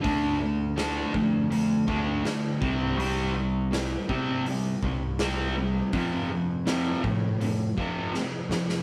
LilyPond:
<<
  \new Staff \with { instrumentName = "Distorted electric guitar" } { \clef bass \time 4/4 \key c \mixolydian \tempo 4 = 82 <d a d'>8 <d a>8 <d a d'>8 <d a>8 <d a>8 <d a d'>8 <d a>8 <c g c'>8 | <c g c'>8 <c g>8 <c g>8 <c g c'>8 <c g>8 <c g>8 <c g c'>8 <c g>8 | <f, c f>8 <f, c>8 <f, c f>8 <f, c>8 <f, c>8 <f, c f>8 <f, c>8 <f, c>8 | }
  \new Staff \with { instrumentName = "Picked electric bass" } { \clef bass \time 4/4 \key c \mixolydian d,4. f,4 d,8 r8 c,8 | c,4. c4 c,4. | f,4. a,4 f,8 r8 f,8 | }
  \new DrumStaff \with { instrumentName = "Drums" } \drummode { \time 4/4 <hho bd>4 <hho sn>8 bd8 hho8 bd8 <hho sn>8 bd8 | hho4 <hho sn>8 bd8 hho8 bd8 <hho sn>4 | <hho bd>4 <hho sn>8 bd8 hho8 bd8 sn8 sn16 sn16 | }
>>